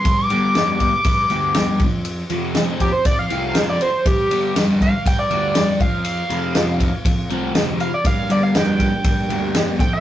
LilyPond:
<<
  \new Staff \with { instrumentName = "Analog synth lead" } { \time 4/4 \key g \minor \tempo 4 = 120 c'''16 d'''4~ d'''16 d'''2 r8 | r4. g'16 c''16 d''16 f''4 d''16 c''8 | g'4 r8 f''8 g''16 d''4~ d''16 f''8~ | f''2~ f''8 r4 f''16 d''16 |
f''16 f''16 d''16 f''16 g''2 r8 g''16 f''16 | }
  \new Staff \with { instrumentName = "Tonewheel organ" } { \time 4/4 \key g \minor r1 | r1 | r1 | r1 |
<g bes d' g'>2.~ <g bes d' g'>8 <a c' f' a'>8 | }
  \new Staff \with { instrumentName = "Distorted electric guitar" } { \clef bass \time 4/4 \key g \minor r8 <g, d g>8 <g, d g>8 r4 <g, d g>8 <g, d g>8 r8 | r8 <f, c f>8 <f, c f>8 r4 <f, c f>8 <f, c f>8 r8 | r8 <g, d g>8 <g, d g>8 r4 <g, d g>8 <g, d g>8 r8 | r8 <f, c f>8 <f, c f>8 r4 <f, c f>8 <f, c f>8 r8 |
r8 <g, d g>8 <g, d g>8 r4 <g, d g>8 <g, d g>8 r8 | }
  \new Staff \with { instrumentName = "Picked electric bass" } { \clef bass \time 4/4 \key g \minor g,8 g,4. g,8 d,8 c,16 r16 f,8~ | f,8 f,4. f,8 c,8 f,8 r8 | g,8 g,4. g,8 d,8 g,16 r16 f,8~ | f,8 f,4. f,8 c,8 d,8 r8 |
g,8 g,4. g,8 d,8 g,16 r16 f,8 | }
  \new DrumStaff \with { instrumentName = "Drums" } \drummode { \time 4/4 <bd cymr>8 cymr8 <cymr sn>8 <bd cymr>8 <bd cymr>8 cymr8 <cymr sn>8 <bd cymr>8 | cymr8 cymr8 <cymr sn>8 <bd cymr>8 <bd cymr>8 cymr8 <cymr sn>8 cymr8 | <bd cymr>8 cymr8 <cymr sn>8 <bd cymr>8 <bd cymr>8 cymr8 <cymr sn>8 <bd cymr>8 | cymr8 cymr8 <cymr sn>8 <bd cymr>8 <bd cymr>8 cymr8 <cymr sn>8 cymr8 |
<bd cymr>8 cymr8 <cymr sn>8 <bd cymr>8 <bd cymr>8 cymr8 <cymr sn>8 <bd cymr>8 | }
>>